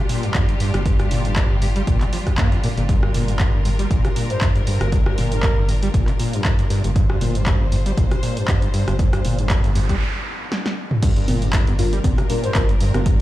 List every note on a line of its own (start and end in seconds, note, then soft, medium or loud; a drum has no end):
0.00 9.97 G3 medium
0.00 9.97 D4 medium
0.00 9.97 F4 medium
0.00 2.88 G4 medium
0.09 0.25 A#2 medium
0.09 open hi-hat loud
0.23 0.33 G2 medium
0.23 closed hi-hat soft
0.34 0.46 G2 medium
0.34 0.39 G2 medium
0.34 kick loud
0.34 clap loud
0.34 closed hi-hat medium
0.49 0.55 G2 medium
0.49 closed hi-hat soft
0.60 0.72 G2 loud
0.60 open hi-hat loud
0.74 1.07 G1 medium
0.74 0.80 G3 medium
0.74 cross-stick medium
0.74 closed hi-hat soft
0.86 0.97 G2 loud
0.86 kick loud
0.86 closed hi-hat medium
0.99 1.09 G2 medium
0.99 cross-stick medium
0.99 closed hi-hat soft
1.11 1.45 G1 loud
1.11 1.26 A#2 medium
1.11 open hi-hat loud
1.25 1.34 G2 medium
1.25 closed hi-hat soft
1.36 1.48 G2 loud
1.36 kick loud
1.36 clap loud
1.36 closed hi-hat medium
1.50 1.83 G1 medium
1.50 1.57 G2 medium
1.62 1.66 G2 loud
1.62 open hi-hat loud
1.76 1.82 G3 medium
1.76 closed hi-hat soft
1.87 1.98 G1 medium
1.87 2.03 A#2 medium
1.87 kick loud
1.87 closed hi-hat medium
2.01 2.05 D3 medium
2.01 clap soft
2.01 closed hi-hat soft
2.13 2.17 F3 medium
2.13 open hi-hat loud
2.27 2.33 G2 medium
2.27 kick medium
2.27 cross-stick medium
2.27 closed hi-hat medium
2.38 2.49 G2 medium
2.38 2.50 A#3 medium
2.38 kick loud
2.38 clap loud
2.38 closed hi-hat medium
2.52 2.58 F2 medium
2.52 closed hi-hat soft
2.64 2.68 A#2 loud
2.64 open hi-hat loud
2.77 3.10 G1 medium
2.77 2.84 A#2 medium
2.77 closed hi-hat soft
2.89 3.00 G2 loud
2.89 6.95 A#4 medium
2.89 kick loud
2.89 closed hi-hat medium
3.03 3.12 G2 medium
3.03 cross-stick medium
3.14 3.49 G1 loud
3.14 3.30 A#2 medium
3.14 open hi-hat loud
3.28 3.38 G2 medium
3.28 closed hi-hat medium
3.40 3.51 G2 loud
3.40 kick loud
3.40 clap loud
3.40 closed hi-hat medium
3.54 3.87 G1 medium
3.54 3.60 G2 medium
3.65 3.70 G2 loud
3.65 open hi-hat loud
3.79 3.85 G3 medium
3.79 closed hi-hat medium
3.91 4.01 G1 medium
3.91 4.06 A#2 medium
3.91 kick loud
3.91 closed hi-hat medium
4.05 4.08 D3 medium
4.05 cross-stick medium
4.05 closed hi-hat soft
4.16 4.31 A#2 medium
4.16 open hi-hat loud
4.30 4.39 G2 medium
4.30 4.47 C5 medium
4.30 closed hi-hat soft
4.41 4.46 G2 medium
4.41 4.52 G2 medium
4.41 kick loud
4.41 clap loud
4.41 closed hi-hat medium
4.55 4.62 G2 medium
4.55 closed hi-hat soft
4.67 4.78 G2 loud
4.67 open hi-hat loud
4.81 5.14 G1 medium
4.81 4.87 G2 medium
4.81 cross-stick medium
4.81 closed hi-hat soft
4.92 5.04 G2 loud
4.92 kick loud
4.92 closed hi-hat medium
5.06 5.16 G2 medium
5.06 cross-stick medium
5.18 5.52 G1 loud
5.18 5.33 A#2 medium
5.18 open hi-hat loud
5.32 5.41 G2 medium
5.32 5.69 A#4 medium
5.32 closed hi-hat medium
5.43 5.55 G2 loud
5.43 kick loud
5.43 clap loud
5.43 closed hi-hat medium
5.57 5.90 G1 medium
5.57 5.63 G2 medium
5.69 5.73 G2 loud
5.69 open hi-hat loud
5.82 5.89 G3 medium
5.82 closed hi-hat medium
5.94 6.05 G1 medium
5.94 6.09 A#2 medium
5.94 kick loud
5.94 closed hi-hat medium
6.08 6.12 D3 medium
6.08 clap soft
6.08 closed hi-hat soft
6.19 6.35 A#2 medium
6.19 open hi-hat loud
6.33 6.43 G2 medium
6.33 closed hi-hat medium
6.45 6.56 G2 medium
6.45 6.50 G2 medium
6.45 kick loud
6.45 clap loud
6.45 closed hi-hat medium
6.59 6.65 G2 medium
6.59 closed hi-hat soft
6.70 6.82 G2 loud
6.70 open hi-hat loud
6.84 7.17 G1 medium
6.84 6.91 G2 medium
6.84 closed hi-hat soft
6.96 7.07 G2 loud
6.96 10.01 C5 medium
6.96 kick loud
6.96 closed hi-hat medium
7.10 7.19 G2 medium
7.10 cross-stick medium
7.21 7.56 G1 loud
7.21 7.37 A#2 medium
7.21 open hi-hat loud
7.35 7.45 G2 medium
7.35 closed hi-hat medium
7.46 7.58 G2 loud
7.46 kick loud
7.46 clap loud
7.46 closed hi-hat medium
7.61 7.93 G1 medium
7.61 7.67 G2 medium
7.72 7.77 G2 loud
7.72 open hi-hat loud
7.86 7.92 G3 medium
7.86 closed hi-hat medium
7.97 8.08 G1 medium
7.97 8.13 A#2 medium
7.97 kick loud
7.97 closed hi-hat medium
8.11 8.15 D3 medium
8.11 cross-stick medium
8.11 closed hi-hat soft
8.23 8.38 A#2 medium
8.23 open hi-hat loud
8.37 8.46 G2 medium
8.37 closed hi-hat soft
8.48 8.59 G2 medium
8.48 kick loud
8.48 clap loud
8.48 closed hi-hat medium
8.62 8.69 G2 medium
8.62 closed hi-hat soft
8.74 8.85 G2 loud
8.74 open hi-hat loud
8.88 9.20 G1 medium
8.88 8.94 G2 medium
8.88 cross-stick medium
8.88 closed hi-hat soft
8.99 9.11 G2 loud
8.99 kick loud
8.99 closed hi-hat medium
8.99 noise sweep medium
9.13 9.23 G2 medium
9.13 cross-stick medium
9.13 closed hi-hat soft
9.25 9.59 G1 loud
9.25 9.40 A#2 medium
9.25 open hi-hat loud
9.39 9.48 G2 medium
9.39 closed hi-hat medium
9.50 9.62 G2 loud
9.50 kick loud
9.50 clap loud
9.50 closed hi-hat medium
9.64 9.97 G1 medium
9.64 9.70 G2 medium
9.64 closed hi-hat soft
9.75 9.80 G2 loud
9.75 open hi-hat loud
9.89 9.96 G3 medium
9.89 kick medium
9.89 closed hi-hat medium
10.52 snare medium
10.66 snare medium
10.91 mid tom medium
11.03 11.14 G2 loud
11.03 13.21 G3 medium
11.03 13.21 D4 medium
11.03 13.21 F4 medium
11.03 13.21 A#4 medium
11.03 kick loud
11.03 closed hi-hat medium
11.03 crash loud
11.16 11.26 G2 medium
11.16 closed hi-hat soft
11.28 11.62 G1 loud
11.28 11.43 A#2 medium
11.28 open hi-hat loud
11.28 high conga medium
11.42 11.51 G2 medium
11.42 closed hi-hat soft
11.53 11.65 G2 loud
11.53 kick loud
11.53 clap loud
11.53 closed hi-hat loud
11.67 12.00 G1 medium
11.67 11.74 G2 medium
11.67 closed hi-hat soft
11.67 high conga soft
11.79 11.83 G2 loud
11.79 11.92 G3 medium
11.79 11.92 D4 medium
11.79 11.92 F4 medium
11.79 11.92 A#4 loud
11.79 open hi-hat loud
11.93 11.99 G3 medium
11.93 closed hi-hat soft
12.04 12.15 G1 medium
12.04 12.20 A#2 medium
12.04 kick loud
12.04 closed hi-hat loud
12.04 high conga medium
12.18 12.22 D3 medium
12.18 cross-stick medium
12.18 closed hi-hat soft
12.30 12.45 A#2 medium
12.30 12.38 G3 medium
12.30 12.38 D4 medium
12.30 12.38 F4 medium
12.30 12.38 A#4 loud
12.30 open hi-hat loud
12.44 12.53 G2 medium
12.44 12.61 C5 medium
12.44 closed hi-hat soft
12.55 12.89 G1 medium
12.55 12.60 G2 medium
12.55 12.68 G3 medium
12.55 12.68 D4 medium
12.55 12.68 F4 medium
12.55 12.68 A#4 loud
12.55 kick loud
12.55 clap loud
12.55 closed hi-hat medium
12.55 high conga soft
12.69 12.75 G2 medium
12.69 closed hi-hat soft
12.80 12.92 G2 loud
12.80 open hi-hat loud
12.94 13.21 G1 loud
12.94 13.01 G2 medium
12.94 13.01 G3 medium
12.94 13.01 D4 medium
12.94 13.01 F4 medium
12.94 13.01 A#4 loud
12.94 cross-stick medium
12.94 closed hi-hat soft
12.94 high conga medium
13.06 13.17 G2 loud
13.06 kick loud
13.06 closed hi-hat loud